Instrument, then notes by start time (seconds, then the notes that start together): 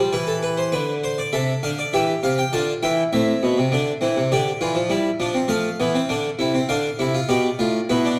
harpsichord
Already playing: G4 C5
0.00 G3
0.13 E3 B4
0.27 A4
0.43 B4
0.57 C5
0.72 D3 B4
1.04 C5
1.18 D5
1.33 C3 A4 E5
1.63 D3 F5
1.79 D5
1.93 E3 G4 E5
2.23 C3 F5
2.38 G5
2.53 D3 F4 A5
2.83 E3 E4 G5
3.13 A2 C4 E5
3.43 B2
3.58 C3
3.72 D3 D4
4.01 E3 C4
4.17 C3
4.32 D3 G4 D5
4.61 E3 F4
4.75 F3
4.89 G3 E4
5.20 F3 D4
5.34 C4
5.48 F3 A3 F5
5.80 E3 B3
5.94 C4
6.09 D3 D4
6.39 C3 E4
6.54 C4
6.69 D3 D4 F5
6.99 C3 E4
7.14 F4
7.29 B2 G4 D5
7.59 A2 F4
7.90 B2 E4 B4
8.05 D4